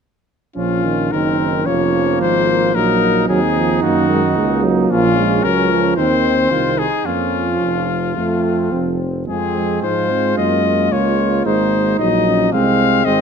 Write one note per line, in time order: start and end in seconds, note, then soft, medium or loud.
0.56 1.14 A#1 soft
0.56 0.86 F3 soft
0.56 1.13 C#4 soft
0.56 1.08 C#4 soft
0.56 1.13 F4 soft
0.85 1.11 D#3 soft
1.11 1.66 F#1 soft
1.11 1.69 D#3 soft
1.11 1.68 C4 soft
1.11 1.68 D#4 soft
1.11 1.68 A#4 medium
1.66 2.23 F1 soft
1.66 2.74 F3 soft
1.66 2.75 A#3 soft
1.66 2.22 C#4 soft
1.66 2.20 C#5 medium
2.21 2.77 G#1 soft
2.21 2.49 G#3 soft
2.21 2.76 C5 medium
2.48 2.74 A#3 medium
2.74 3.28 A#1 medium
2.74 3.28 F#3 soft
2.74 3.30 A#3 soft
2.74 3.28 D#4 soft
2.74 3.28 A#4 medium
3.29 3.85 D#2 medium
3.29 3.41 F#3 medium
3.29 3.84 C4 soft
3.29 4.92 D#4 medium
3.29 3.82 G#4 medium
3.56 3.84 F3 soft
3.83 4.37 F#2 medium
3.83 4.38 D#3 soft
3.83 4.09 A#3 soft
3.83 4.63 F#4 medium
4.10 4.22 G#3 medium
4.37 4.90 C#2 medium
4.37 4.65 G#3 medium
4.37 5.46 A#3 medium
4.63 4.92 F#3 medium
4.90 5.43 A#1 medium
4.90 5.17 F3 medium
4.90 5.97 C#4 soft
4.90 5.45 F4 medium
5.18 5.47 G#3 soft
5.44 5.96 C#2 medium
5.44 5.73 F#3 soft
5.44 5.97 C#4 soft
5.44 5.96 A#4 medium
5.71 5.99 F3 medium
5.96 6.50 D#2 medium
5.96 6.50 D#3 soft
5.96 6.76 C4 soft
5.96 6.52 C4 soft
5.96 6.80 C5 medium
6.51 6.85 C2 soft
6.51 6.86 D#3 soft
6.51 6.79 F4 soft
6.78 7.08 D#4 soft
6.78 7.07 G#4 medium
7.05 7.57 F2 soft
7.05 8.13 F3 soft
7.05 7.52 A#3 soft
7.05 7.88 C#4 soft
7.05 9.00 F4 soft
7.61 8.18 F1 soft
7.61 8.13 F3 soft
8.16 8.73 F2 soft
8.16 8.99 F3 soft
8.16 8.73 A3 soft
8.16 8.96 C4 soft
8.72 9.29 F1 soft
8.72 9.27 C4 soft
9.28 9.83 F2 soft
9.28 9.54 F3 soft
9.28 9.84 G#3 soft
9.28 9.86 C4 soft
9.28 9.79 G#4 medium
9.56 11.42 G#3 soft
9.83 10.38 G#2 soft
9.83 10.12 F3 soft
9.83 10.91 F4 soft
9.83 10.36 C5 medium
10.10 10.37 C4 soft
10.37 10.91 F#2 soft
10.37 10.64 A#3 soft
10.37 10.94 D#5 medium
10.64 11.97 A#3 soft
10.91 11.45 C#2 soft
10.91 11.48 F4 soft
10.91 11.45 C#5 medium
11.46 11.98 G#1 soft
11.46 11.99 G#3 soft
11.46 12.54 D#4 soft
11.46 11.99 C5 medium
11.99 12.52 A#1 medium
11.99 12.52 F#3 soft
11.99 12.26 D#4 soft
11.99 12.52 D#5 medium
12.26 12.54 C#4 soft
12.53 13.05 C2 medium
12.53 13.05 G#3 medium
12.53 13.21 C4 soft
12.53 13.06 C4 medium
12.53 13.07 F5 medium
13.05 13.21 G#1 medium
13.05 13.21 G#3 medium
13.05 13.21 C4 medium
13.05 13.21 D#5 medium